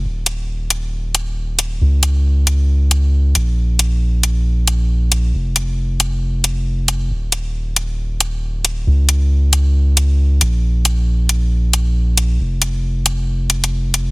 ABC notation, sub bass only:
X:1
M:4/4
L:1/8
Q:"Swing 16ths" 1/4=136
K:Fphr
V:1 name="Sub bass" clef=bass
E,,,8 | D,,6- D,, B,,,- | B,,,8 | F,,,8 |
E,,,8 | D,,6- D,, B,,,- | B,,,8 | F,,,8 |]